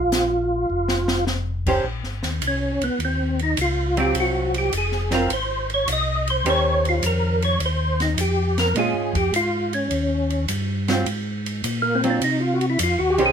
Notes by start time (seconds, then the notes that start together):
Already playing: A#1 F4
0.12 snare, closed hi-hat
0.70 F1
0.88 snare
1.08 snare
1.27 snare
1.66 D#3 C#4 G4 C5, kick, crash
1.84 A#1
2.03 G1, snare
2.23 D#2, snare, ride
2.42 C2, hi-hat pedal, ride
2.48 C#4
2.81 C2 B3, ride
2.99 D#2, ride
3.05 C4
3.39 D#4, ride
3.57 C#2, hi-hat pedal, ride
3.61 F4
3.97 F#3 C4 F4 G4, ride
4.14 C2, ride
4.20 F#4
4.54 G4, ride
4.72 F1, hi-hat pedal, ride
4.77 G#4
4.92 snare
5.11 F#3 C4 F4 A#4, snare, ride
5.30 G#1 C5, ride
5.70 ride
5.74 C#5
5.87 C2, hi-hat pedal, ride
5.92 D#5
6.27 C5, ride
6.45 D#2 D#3 C#4 G4 C5, ride
6.50 C#5
6.85 F4, ride
7.03 F2 A#4, hi-hat pedal, ride
7.42 C#5, ride
7.60 D#2, ride
7.66 C5
8.00 D#4, snare, ride
8.17 F2 G4, hi-hat pedal, ride
8.58 A#4, snare, ride
8.75 A#2 G#3 C#4 F4, ride
8.79 G#4
8.94 G#2
9.13 F2 G4, kick, ride
9.32 G#2 F4, hi-hat pedal, ride
9.73 C#4, ride
9.91 D#2, ride
10.30 ride
10.48 G2, hi-hat pedal, ride
10.88 F#3 C4 F4, snare, ride
11.06 G#2, ride
11.46 ride
11.64 A#2, hi-hat pedal, ride
11.82 A#3
11.95 C4
12.04 F#3 C4 F4, ride
12.10 D4
12.21 C3 D#4, ride
12.40 F4
12.54 F#4
12.61 ride
12.70 E4
12.79 F2, hi-hat pedal, ride
12.83 F4
12.99 D#2 F#4
13.10 G4
13.18 C2 D#3 C#4 G4 C5, ride
13.26 G#4